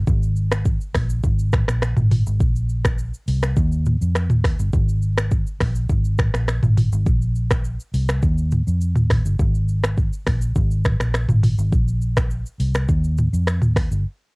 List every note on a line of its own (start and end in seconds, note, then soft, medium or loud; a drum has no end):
0.07 0.77 G#1 loud
0.07 kick loud
0.07 shaker medium
0.23 shaker medium
0.36 shaker medium
0.52 finger snap medium
0.52 cross-stick loud
0.52 shaker loud
0.65 kick loud
0.65 shaker medium
0.81 shaker medium
0.95 1.20 A#1 medium
0.95 finger snap medium
0.95 kick medium
0.95 cross-stick loud
0.95 open hi-hat medium
0.95 shaker medium
1.10 shaker loud
1.24 1.63 G#1 loud
1.24 kick loud
1.24 shaker medium
1.39 shaker medium
1.53 finger snap medium
1.53 kick loud
1.53 cross-stick loud
1.53 mid tom medium
1.53 shaker medium
1.68 1.94 A#1 medium
1.68 finger snap medium
1.68 cross-stick loud
1.68 shaker medium
1.82 finger snap medium
1.82 cross-stick loud
1.82 shaker medium
1.97 2.23 G#1 medium
1.97 mid tom loud
1.97 shaker medium
2.11 mid tom medium
2.11 open hi-hat medium
2.11 shaker medium
2.26 2.40 G#1 medium
2.26 shaker loud
2.40 3.10 A#1 loud
2.40 kick loud
2.40 shaker medium
2.56 shaker medium
2.69 shaker soft
2.85 finger snap loud
2.85 kick loud
2.85 cross-stick loud
2.85 shaker loud
2.98 shaker medium
3.14 shaker medium
3.28 3.53 C2 medium
3.28 open hi-hat medium
3.28 shaker medium
3.42 finger snap medium
3.42 cross-stick loud
3.42 shaker loud
3.57 3.96 D#2 loud
3.57 kick loud
3.57 shaker medium
3.72 shaker medium
3.86 mid tom medium
3.86 shaker medium
4.01 4.30 F2 medium
4.01 shaker medium
4.15 finger snap medium
4.15 cross-stick loud
4.15 shaker medium
4.30 4.56 D#2 medium
4.30 mid tom medium
4.30 shaker medium
4.44 finger snap medium
4.44 kick medium
4.44 cross-stick loud
4.44 open hi-hat medium
4.44 shaker medium
4.59 4.72 G1 medium
4.59 shaker loud
4.73 5.43 G#1 loud
4.73 kick loud
4.73 shaker medium
4.89 shaker medium
5.02 shaker soft
5.18 finger snap loud
5.18 cross-stick loud
5.18 shaker loud
5.31 kick loud
5.31 shaker medium
5.47 shaker medium
5.61 5.86 A#1 medium
5.61 finger snap medium
5.61 kick loud
5.61 cross-stick loud
5.61 open hi-hat medium
5.61 shaker medium
5.75 shaker loud
5.89 6.29 G#1 loud
5.89 kick loud
5.89 shaker medium
6.05 shaker medium
6.19 finger snap medium
6.19 kick medium
6.19 cross-stick loud
6.19 mid tom medium
6.19 shaker medium
6.34 6.60 A#1 medium
6.34 finger snap medium
6.34 cross-stick loud
6.34 shaker medium
6.48 finger snap medium
6.48 cross-stick loud
6.48 shaker medium
6.63 6.89 G#1 medium
6.63 mid tom loud
6.63 shaker medium
6.77 mid tom medium
6.77 open hi-hat medium
6.77 shaker medium
6.92 7.06 G#1 loud
6.92 shaker loud
7.06 7.76 A#1 loud
7.06 kick loud
7.06 shaker medium
7.22 shaker medium
7.35 shaker medium
7.51 finger snap loud
7.51 kick loud
7.51 cross-stick loud
7.51 shaker loud
7.64 shaker medium
7.80 shaker medium
7.94 8.19 C2 medium
7.94 open hi-hat medium
7.94 shaker medium
8.09 finger snap medium
8.09 cross-stick loud
8.09 shaker loud
8.23 8.62 D#2 loud
8.23 kick medium
8.23 shaker medium
8.38 shaker medium
8.51 mid tom medium
8.51 shaker medium
8.67 8.96 F2 medium
8.67 shaker medium
8.81 shaker medium
8.96 9.22 D#2 loud
8.96 mid tom loud
8.96 shaker medium
9.10 finger snap medium
9.10 kick medium
9.10 cross-stick loud
9.10 mid tom medium
9.10 open hi-hat medium
9.10 shaker medium
9.25 9.38 G1 medium
9.25 shaker loud
9.39 10.09 G#1 loud
9.39 kick loud
9.39 shaker medium
9.55 shaker medium
9.68 shaker medium
9.84 finger snap loud
9.84 cross-stick loud
9.84 shaker loud
9.97 kick loud
9.97 shaker medium
10.13 shaker medium
10.27 10.52 A#1 medium
10.27 finger snap medium
10.27 kick medium
10.27 cross-stick loud
10.27 open hi-hat medium
10.27 shaker medium
10.42 shaker loud
10.55 10.95 G#1 loud
10.55 kick loud
10.55 shaker medium
10.71 shaker medium
10.85 finger snap medium
10.85 kick loud
10.85 cross-stick loud
10.85 mid tom medium
10.85 shaker medium
11.00 11.26 A#1 medium
11.00 finger snap medium
11.00 cross-stick medium
11.00 shaker medium
11.14 finger snap medium
11.14 cross-stick loud
11.14 shaker medium
11.29 11.55 G#1 medium
11.29 mid tom loud
11.29 shaker medium
11.43 mid tom medium
11.43 open hi-hat medium
11.43 shaker medium
11.58 11.72 G#1 loud
11.58 shaker loud
11.72 12.42 A#1 loud
11.72 kick loud
11.72 shaker medium
11.88 shaker medium
12.01 shaker medium
12.17 finger snap loud
12.17 kick loud
12.17 cross-stick loud
12.17 shaker loud
12.30 shaker medium
12.46 shaker medium
12.60 12.85 C2 medium
12.60 open hi-hat medium
12.60 shaker medium
12.75 finger snap medium
12.75 cross-stick loud
12.75 shaker loud
12.89 13.28 D#2 loud
12.89 kick medium
12.89 shaker medium
13.04 shaker medium
13.18 mid tom medium
13.18 shaker medium
13.33 13.62 F2 medium
13.33 shaker medium
13.47 finger snap medium
13.47 cross-stick loud
13.47 shaker medium
13.62 13.88 D#2 medium
13.62 mid tom loud
13.62 shaker medium
13.76 finger snap medium
13.76 kick medium
13.76 cross-stick loud
13.76 open hi-hat medium
13.76 shaker medium
13.91 14.04 G1 medium
13.91 shaker loud